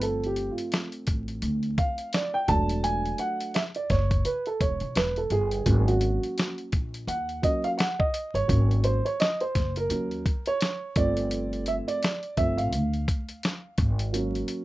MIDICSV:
0, 0, Header, 1, 4, 480
1, 0, Start_track
1, 0, Tempo, 705882
1, 14, Time_signature, 4, 2, 24, 8
1, 9959, End_track
2, 0, Start_track
2, 0, Title_t, "Upright piano"
2, 0, Program_c, 0, 0
2, 0, Note_on_c, 0, 53, 53
2, 0, Note_on_c, 0, 57, 50
2, 0, Note_on_c, 0, 60, 57
2, 18, Note_on_c, 0, 69, 85
2, 179, Note_on_c, 0, 67, 85
2, 181, Note_off_c, 0, 69, 0
2, 341, Note_off_c, 0, 67, 0
2, 346, Note_on_c, 0, 65, 68
2, 564, Note_off_c, 0, 65, 0
2, 1212, Note_on_c, 0, 77, 93
2, 1456, Note_on_c, 0, 74, 88
2, 1460, Note_off_c, 0, 77, 0
2, 1591, Note_on_c, 0, 79, 98
2, 1602, Note_off_c, 0, 74, 0
2, 1665, Note_off_c, 0, 53, 0
2, 1667, Note_off_c, 0, 57, 0
2, 1668, Note_off_c, 0, 60, 0
2, 1684, Note_off_c, 0, 79, 0
2, 1685, Note_on_c, 0, 54, 54
2, 1687, Note_on_c, 0, 57, 52
2, 1690, Note_on_c, 0, 81, 103
2, 1692, Note_on_c, 0, 62, 61
2, 1928, Note_on_c, 0, 80, 103
2, 1939, Note_off_c, 0, 81, 0
2, 2171, Note_on_c, 0, 78, 94
2, 2179, Note_off_c, 0, 80, 0
2, 2382, Note_off_c, 0, 54, 0
2, 2383, Note_off_c, 0, 57, 0
2, 2386, Note_off_c, 0, 62, 0
2, 2413, Note_on_c, 0, 76, 90
2, 2420, Note_off_c, 0, 78, 0
2, 2447, Note_off_c, 0, 76, 0
2, 2556, Note_on_c, 0, 74, 86
2, 2654, Note_on_c, 0, 73, 88
2, 2656, Note_off_c, 0, 74, 0
2, 2891, Note_on_c, 0, 71, 83
2, 2901, Note_off_c, 0, 73, 0
2, 3026, Note_off_c, 0, 71, 0
2, 3039, Note_on_c, 0, 69, 86
2, 3128, Note_off_c, 0, 69, 0
2, 3135, Note_on_c, 0, 73, 83
2, 3374, Note_on_c, 0, 71, 81
2, 3381, Note_off_c, 0, 73, 0
2, 3519, Note_on_c, 0, 69, 76
2, 3521, Note_off_c, 0, 71, 0
2, 3617, Note_on_c, 0, 68, 98
2, 3618, Note_off_c, 0, 69, 0
2, 3845, Note_on_c, 0, 54, 57
2, 3846, Note_on_c, 0, 58, 50
2, 3852, Note_on_c, 0, 61, 61
2, 3996, Note_on_c, 0, 66, 75
2, 4010, Note_off_c, 0, 68, 0
2, 4449, Note_off_c, 0, 66, 0
2, 4543, Note_off_c, 0, 54, 0
2, 4543, Note_off_c, 0, 58, 0
2, 4546, Note_off_c, 0, 61, 0
2, 4813, Note_on_c, 0, 78, 94
2, 5047, Note_on_c, 0, 54, 51
2, 5050, Note_on_c, 0, 58, 44
2, 5055, Note_on_c, 0, 61, 57
2, 5059, Note_on_c, 0, 75, 95
2, 5061, Note_off_c, 0, 78, 0
2, 5190, Note_off_c, 0, 75, 0
2, 5197, Note_on_c, 0, 77, 102
2, 5231, Note_off_c, 0, 77, 0
2, 5266, Note_off_c, 0, 54, 0
2, 5268, Note_off_c, 0, 58, 0
2, 5270, Note_off_c, 0, 61, 0
2, 5287, Note_on_c, 0, 78, 94
2, 5424, Note_off_c, 0, 78, 0
2, 5435, Note_on_c, 0, 75, 94
2, 5675, Note_on_c, 0, 73, 98
2, 5684, Note_off_c, 0, 75, 0
2, 5764, Note_on_c, 0, 54, 57
2, 5766, Note_on_c, 0, 58, 51
2, 5773, Note_on_c, 0, 61, 66
2, 6014, Note_on_c, 0, 72, 89
2, 6023, Note_off_c, 0, 73, 0
2, 6105, Note_off_c, 0, 54, 0
2, 6106, Note_off_c, 0, 58, 0
2, 6110, Note_off_c, 0, 61, 0
2, 6157, Note_on_c, 0, 73, 86
2, 6161, Note_off_c, 0, 72, 0
2, 6256, Note_on_c, 0, 75, 98
2, 6257, Note_off_c, 0, 73, 0
2, 6399, Note_on_c, 0, 72, 82
2, 6403, Note_off_c, 0, 75, 0
2, 6621, Note_off_c, 0, 72, 0
2, 6645, Note_on_c, 0, 70, 93
2, 6736, Note_on_c, 0, 54, 46
2, 6736, Note_on_c, 0, 58, 42
2, 6739, Note_on_c, 0, 61, 53
2, 6951, Note_off_c, 0, 54, 0
2, 6951, Note_off_c, 0, 58, 0
2, 6953, Note_off_c, 0, 61, 0
2, 7122, Note_on_c, 0, 73, 102
2, 7135, Note_off_c, 0, 70, 0
2, 7458, Note_on_c, 0, 53, 54
2, 7460, Note_on_c, 0, 57, 52
2, 7462, Note_on_c, 0, 74, 98
2, 7465, Note_on_c, 0, 60, 63
2, 7467, Note_off_c, 0, 73, 0
2, 7911, Note_off_c, 0, 74, 0
2, 7940, Note_on_c, 0, 76, 93
2, 7974, Note_off_c, 0, 76, 0
2, 8076, Note_on_c, 0, 74, 105
2, 8149, Note_off_c, 0, 53, 0
2, 8150, Note_off_c, 0, 57, 0
2, 8153, Note_off_c, 0, 60, 0
2, 8390, Note_off_c, 0, 74, 0
2, 8408, Note_on_c, 0, 53, 49
2, 8414, Note_on_c, 0, 57, 45
2, 8415, Note_on_c, 0, 60, 57
2, 8415, Note_on_c, 0, 76, 96
2, 8551, Note_on_c, 0, 77, 86
2, 8562, Note_off_c, 0, 76, 0
2, 8627, Note_off_c, 0, 53, 0
2, 8630, Note_off_c, 0, 57, 0
2, 8630, Note_off_c, 0, 60, 0
2, 9606, Note_on_c, 0, 54, 57
2, 9612, Note_on_c, 0, 58, 54
2, 9616, Note_on_c, 0, 61, 63
2, 9727, Note_off_c, 0, 77, 0
2, 9959, Note_off_c, 0, 54, 0
2, 9959, Note_off_c, 0, 58, 0
2, 9959, Note_off_c, 0, 61, 0
2, 9959, End_track
3, 0, Start_track
3, 0, Title_t, "Upright bass"
3, 0, Program_c, 1, 32
3, 0, Note_on_c, 1, 31, 93
3, 330, Note_off_c, 1, 31, 0
3, 732, Note_on_c, 1, 33, 83
3, 947, Note_off_c, 1, 33, 0
3, 967, Note_on_c, 1, 38, 94
3, 1185, Note_off_c, 1, 38, 0
3, 1687, Note_on_c, 1, 28, 101
3, 2119, Note_off_c, 1, 28, 0
3, 2652, Note_on_c, 1, 30, 92
3, 2867, Note_off_c, 1, 30, 0
3, 3132, Note_on_c, 1, 28, 91
3, 3261, Note_off_c, 1, 28, 0
3, 3271, Note_on_c, 1, 35, 80
3, 3360, Note_off_c, 1, 35, 0
3, 3372, Note_on_c, 1, 28, 85
3, 3588, Note_off_c, 1, 28, 0
3, 3607, Note_on_c, 1, 31, 89
3, 3824, Note_off_c, 1, 31, 0
3, 3849, Note_on_c, 1, 32, 107
3, 4194, Note_off_c, 1, 32, 0
3, 4573, Note_on_c, 1, 34, 82
3, 4788, Note_off_c, 1, 34, 0
3, 4810, Note_on_c, 1, 39, 97
3, 5026, Note_off_c, 1, 39, 0
3, 5672, Note_on_c, 1, 31, 87
3, 5761, Note_off_c, 1, 31, 0
3, 5773, Note_on_c, 1, 32, 101
3, 6116, Note_off_c, 1, 32, 0
3, 6498, Note_on_c, 1, 30, 81
3, 6711, Note_off_c, 1, 30, 0
3, 6729, Note_on_c, 1, 39, 91
3, 6946, Note_off_c, 1, 39, 0
3, 7453, Note_on_c, 1, 31, 91
3, 8010, Note_off_c, 1, 31, 0
3, 8414, Note_on_c, 1, 31, 82
3, 8653, Note_off_c, 1, 31, 0
3, 8653, Note_on_c, 1, 38, 99
3, 8868, Note_off_c, 1, 38, 0
3, 9371, Note_on_c, 1, 32, 101
3, 9801, Note_off_c, 1, 32, 0
3, 9959, End_track
4, 0, Start_track
4, 0, Title_t, "Drums"
4, 11, Note_on_c, 9, 42, 97
4, 79, Note_off_c, 9, 42, 0
4, 161, Note_on_c, 9, 42, 34
4, 229, Note_off_c, 9, 42, 0
4, 247, Note_on_c, 9, 42, 73
4, 315, Note_off_c, 9, 42, 0
4, 395, Note_on_c, 9, 42, 55
4, 463, Note_off_c, 9, 42, 0
4, 488, Note_on_c, 9, 42, 79
4, 501, Note_on_c, 9, 38, 100
4, 556, Note_off_c, 9, 42, 0
4, 569, Note_off_c, 9, 38, 0
4, 627, Note_on_c, 9, 42, 32
4, 695, Note_off_c, 9, 42, 0
4, 725, Note_on_c, 9, 42, 76
4, 731, Note_on_c, 9, 36, 83
4, 793, Note_off_c, 9, 42, 0
4, 799, Note_off_c, 9, 36, 0
4, 871, Note_on_c, 9, 42, 45
4, 939, Note_off_c, 9, 42, 0
4, 966, Note_on_c, 9, 42, 91
4, 1034, Note_off_c, 9, 42, 0
4, 1107, Note_on_c, 9, 42, 31
4, 1175, Note_off_c, 9, 42, 0
4, 1210, Note_on_c, 9, 36, 99
4, 1210, Note_on_c, 9, 42, 71
4, 1278, Note_off_c, 9, 36, 0
4, 1278, Note_off_c, 9, 42, 0
4, 1347, Note_on_c, 9, 42, 49
4, 1415, Note_off_c, 9, 42, 0
4, 1447, Note_on_c, 9, 42, 90
4, 1458, Note_on_c, 9, 38, 108
4, 1515, Note_off_c, 9, 42, 0
4, 1526, Note_off_c, 9, 38, 0
4, 1688, Note_on_c, 9, 42, 80
4, 1690, Note_on_c, 9, 36, 103
4, 1756, Note_off_c, 9, 42, 0
4, 1758, Note_off_c, 9, 36, 0
4, 1832, Note_on_c, 9, 42, 62
4, 1900, Note_off_c, 9, 42, 0
4, 1930, Note_on_c, 9, 42, 99
4, 1998, Note_off_c, 9, 42, 0
4, 2077, Note_on_c, 9, 42, 35
4, 2145, Note_off_c, 9, 42, 0
4, 2164, Note_on_c, 9, 42, 68
4, 2232, Note_off_c, 9, 42, 0
4, 2315, Note_on_c, 9, 42, 56
4, 2383, Note_off_c, 9, 42, 0
4, 2409, Note_on_c, 9, 42, 82
4, 2422, Note_on_c, 9, 38, 106
4, 2477, Note_off_c, 9, 42, 0
4, 2490, Note_off_c, 9, 38, 0
4, 2547, Note_on_c, 9, 42, 33
4, 2615, Note_off_c, 9, 42, 0
4, 2651, Note_on_c, 9, 42, 71
4, 2653, Note_on_c, 9, 36, 83
4, 2664, Note_on_c, 9, 38, 33
4, 2719, Note_off_c, 9, 42, 0
4, 2721, Note_off_c, 9, 36, 0
4, 2732, Note_off_c, 9, 38, 0
4, 2794, Note_on_c, 9, 36, 90
4, 2794, Note_on_c, 9, 42, 49
4, 2862, Note_off_c, 9, 36, 0
4, 2862, Note_off_c, 9, 42, 0
4, 2889, Note_on_c, 9, 42, 92
4, 2957, Note_off_c, 9, 42, 0
4, 3031, Note_on_c, 9, 42, 32
4, 3099, Note_off_c, 9, 42, 0
4, 3132, Note_on_c, 9, 36, 89
4, 3133, Note_on_c, 9, 42, 69
4, 3200, Note_off_c, 9, 36, 0
4, 3201, Note_off_c, 9, 42, 0
4, 3265, Note_on_c, 9, 42, 46
4, 3333, Note_off_c, 9, 42, 0
4, 3369, Note_on_c, 9, 42, 82
4, 3380, Note_on_c, 9, 38, 113
4, 3437, Note_off_c, 9, 42, 0
4, 3448, Note_off_c, 9, 38, 0
4, 3511, Note_on_c, 9, 42, 37
4, 3579, Note_off_c, 9, 42, 0
4, 3606, Note_on_c, 9, 42, 75
4, 3674, Note_off_c, 9, 42, 0
4, 3750, Note_on_c, 9, 42, 60
4, 3818, Note_off_c, 9, 42, 0
4, 3848, Note_on_c, 9, 42, 99
4, 3851, Note_on_c, 9, 36, 99
4, 3916, Note_off_c, 9, 42, 0
4, 3919, Note_off_c, 9, 36, 0
4, 3999, Note_on_c, 9, 42, 37
4, 4067, Note_off_c, 9, 42, 0
4, 4086, Note_on_c, 9, 42, 69
4, 4154, Note_off_c, 9, 42, 0
4, 4239, Note_on_c, 9, 42, 55
4, 4307, Note_off_c, 9, 42, 0
4, 4336, Note_on_c, 9, 42, 76
4, 4348, Note_on_c, 9, 38, 110
4, 4404, Note_off_c, 9, 42, 0
4, 4416, Note_off_c, 9, 38, 0
4, 4475, Note_on_c, 9, 42, 33
4, 4543, Note_off_c, 9, 42, 0
4, 4572, Note_on_c, 9, 42, 72
4, 4576, Note_on_c, 9, 36, 84
4, 4640, Note_off_c, 9, 42, 0
4, 4644, Note_off_c, 9, 36, 0
4, 4720, Note_on_c, 9, 42, 49
4, 4788, Note_off_c, 9, 42, 0
4, 4817, Note_on_c, 9, 42, 91
4, 4885, Note_off_c, 9, 42, 0
4, 4957, Note_on_c, 9, 42, 33
4, 5025, Note_off_c, 9, 42, 0
4, 5055, Note_on_c, 9, 36, 90
4, 5057, Note_on_c, 9, 42, 70
4, 5123, Note_off_c, 9, 36, 0
4, 5125, Note_off_c, 9, 42, 0
4, 5196, Note_on_c, 9, 42, 47
4, 5264, Note_off_c, 9, 42, 0
4, 5295, Note_on_c, 9, 42, 85
4, 5306, Note_on_c, 9, 38, 112
4, 5363, Note_off_c, 9, 42, 0
4, 5374, Note_off_c, 9, 38, 0
4, 5438, Note_on_c, 9, 36, 90
4, 5506, Note_off_c, 9, 36, 0
4, 5534, Note_on_c, 9, 42, 80
4, 5602, Note_off_c, 9, 42, 0
4, 5679, Note_on_c, 9, 42, 66
4, 5747, Note_off_c, 9, 42, 0
4, 5774, Note_on_c, 9, 36, 102
4, 5778, Note_on_c, 9, 42, 95
4, 5842, Note_off_c, 9, 36, 0
4, 5846, Note_off_c, 9, 42, 0
4, 5924, Note_on_c, 9, 42, 36
4, 5992, Note_off_c, 9, 42, 0
4, 6010, Note_on_c, 9, 42, 73
4, 6078, Note_off_c, 9, 42, 0
4, 6160, Note_on_c, 9, 42, 55
4, 6228, Note_off_c, 9, 42, 0
4, 6256, Note_on_c, 9, 42, 85
4, 6268, Note_on_c, 9, 38, 113
4, 6324, Note_off_c, 9, 42, 0
4, 6336, Note_off_c, 9, 38, 0
4, 6395, Note_on_c, 9, 42, 36
4, 6463, Note_off_c, 9, 42, 0
4, 6495, Note_on_c, 9, 42, 69
4, 6496, Note_on_c, 9, 36, 84
4, 6508, Note_on_c, 9, 38, 32
4, 6563, Note_off_c, 9, 42, 0
4, 6564, Note_off_c, 9, 36, 0
4, 6576, Note_off_c, 9, 38, 0
4, 6636, Note_on_c, 9, 42, 49
4, 6704, Note_off_c, 9, 42, 0
4, 6732, Note_on_c, 9, 42, 92
4, 6800, Note_off_c, 9, 42, 0
4, 6876, Note_on_c, 9, 42, 32
4, 6944, Note_off_c, 9, 42, 0
4, 6974, Note_on_c, 9, 36, 100
4, 6977, Note_on_c, 9, 42, 74
4, 7042, Note_off_c, 9, 36, 0
4, 7045, Note_off_c, 9, 42, 0
4, 7111, Note_on_c, 9, 42, 49
4, 7179, Note_off_c, 9, 42, 0
4, 7212, Note_on_c, 9, 42, 91
4, 7223, Note_on_c, 9, 38, 110
4, 7280, Note_off_c, 9, 42, 0
4, 7291, Note_off_c, 9, 38, 0
4, 7451, Note_on_c, 9, 42, 82
4, 7453, Note_on_c, 9, 36, 106
4, 7519, Note_off_c, 9, 42, 0
4, 7521, Note_off_c, 9, 36, 0
4, 7594, Note_on_c, 9, 42, 66
4, 7662, Note_off_c, 9, 42, 0
4, 7691, Note_on_c, 9, 42, 99
4, 7759, Note_off_c, 9, 42, 0
4, 7840, Note_on_c, 9, 42, 34
4, 7908, Note_off_c, 9, 42, 0
4, 7928, Note_on_c, 9, 42, 75
4, 7996, Note_off_c, 9, 42, 0
4, 8080, Note_on_c, 9, 42, 56
4, 8148, Note_off_c, 9, 42, 0
4, 8177, Note_on_c, 9, 42, 86
4, 8190, Note_on_c, 9, 38, 110
4, 8245, Note_off_c, 9, 42, 0
4, 8258, Note_off_c, 9, 38, 0
4, 8315, Note_on_c, 9, 42, 34
4, 8383, Note_off_c, 9, 42, 0
4, 8413, Note_on_c, 9, 42, 75
4, 8415, Note_on_c, 9, 36, 87
4, 8481, Note_off_c, 9, 42, 0
4, 8483, Note_off_c, 9, 36, 0
4, 8557, Note_on_c, 9, 42, 49
4, 8625, Note_off_c, 9, 42, 0
4, 8654, Note_on_c, 9, 42, 94
4, 8722, Note_off_c, 9, 42, 0
4, 8796, Note_on_c, 9, 42, 33
4, 8864, Note_off_c, 9, 42, 0
4, 8895, Note_on_c, 9, 36, 97
4, 8898, Note_on_c, 9, 42, 74
4, 8963, Note_off_c, 9, 36, 0
4, 8966, Note_off_c, 9, 42, 0
4, 9034, Note_on_c, 9, 42, 46
4, 9102, Note_off_c, 9, 42, 0
4, 9134, Note_on_c, 9, 42, 88
4, 9146, Note_on_c, 9, 38, 114
4, 9202, Note_off_c, 9, 42, 0
4, 9214, Note_off_c, 9, 38, 0
4, 9368, Note_on_c, 9, 42, 81
4, 9371, Note_on_c, 9, 36, 113
4, 9436, Note_off_c, 9, 42, 0
4, 9439, Note_off_c, 9, 36, 0
4, 9514, Note_on_c, 9, 42, 65
4, 9582, Note_off_c, 9, 42, 0
4, 9615, Note_on_c, 9, 42, 101
4, 9683, Note_off_c, 9, 42, 0
4, 9760, Note_on_c, 9, 42, 35
4, 9828, Note_off_c, 9, 42, 0
4, 9846, Note_on_c, 9, 42, 73
4, 9914, Note_off_c, 9, 42, 0
4, 9959, End_track
0, 0, End_of_file